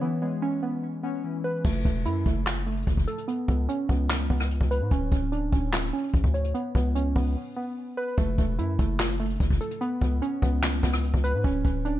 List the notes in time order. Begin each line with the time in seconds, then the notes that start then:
0.01 E3 B3
0.22 G#3 B3
0.42 E3 C#4
0.63 B3
1.03 B3 C#4
1.24 E3
1.44 B4
1.65 F#1 A3, kick, crash
1.85 E1 A3, kick, closed hi-hat
2.05 F#2 E4, closed hi-hat
2.26 F#1 A3, kick, closed hi-hat
2.46 snare, clap
2.53 closed hi-hat
2.60 closed hi-hat
2.67 A3, closed hi-hat
2.72 closed hi-hat
2.77 closed hi-hat
2.82 closed hi-hat
2.87 F#1, kick, closed hi-hat
2.97 kick
3.08 A4, closed hi-hat
3.18 closed hi-hat
3.28 B3, closed hi-hat
3.48 C#2 B3, kick, closed hi-hat
3.69 C#4, closed hi-hat
3.89 C#2 B3, kick, closed hi-hat
4.10 snare, clap
4.30 C#2 B3, kick, closed hi-hat
4.37 cross-stick, closed hi-hat
4.44 closed hi-hat
4.51 closed hi-hat
4.61 C#2, kick
4.71 B4, closed hi-hat
4.81 G#2
4.91 D1 C#4, kick, closed hi-hat
5.12 D1 C#4, kick, closed hi-hat
5.32 D4, closed hi-hat
5.52 D1 C#4, kick, closed hi-hat
5.73 snare, clap
5.80 closed hi-hat
5.87 closed hi-hat
5.93 C#4, closed hi-hat
5.98 closed hi-hat
6.04 closed hi-hat
6.09 closed hi-hat
6.14 A1, kick, closed hi-hat
6.24 D2, kick
6.34 C#5, closed hi-hat
6.44 closed hi-hat
6.54 B3, closed hi-hat
6.75 C#2 B3, kick, closed hi-hat
6.95 C#4, closed hi-hat
7.16 C#2 B3, kick, open hi-hat
7.56 B3
7.97 B4
8.18 F#1 A3, kick, closed hi-hat
8.38 E1 A3, kick, closed hi-hat
8.59 F#2 E4, closed hi-hat
8.79 F#1 A3, kick, closed hi-hat
8.99 snare, clap
9.06 closed hi-hat
9.13 closed hi-hat
9.20 A3, closed hi-hat
9.25 closed hi-hat
9.30 closed hi-hat
9.35 closed hi-hat
9.40 F#1, kick, closed hi-hat
9.50 kick
9.61 A4, closed hi-hat
9.71 closed hi-hat
9.81 B3, closed hi-hat
10.01 C#2 B3, kick, closed hi-hat
10.22 C#4, closed hi-hat
10.42 C#2 B3, kick, closed hi-hat
10.63 snare, clap
10.83 C#2 B3, kick, snare, closed hi-hat
10.90 cross-stick, closed hi-hat
10.97 closed hi-hat
11.04 closed hi-hat
11.14 C#2, kick
11.24 B4, closed hi-hat
11.34 G#2
11.44 D1 C#4, kick, closed hi-hat
11.65 D1 C#4, kick, closed hi-hat
11.85 D4, closed hi-hat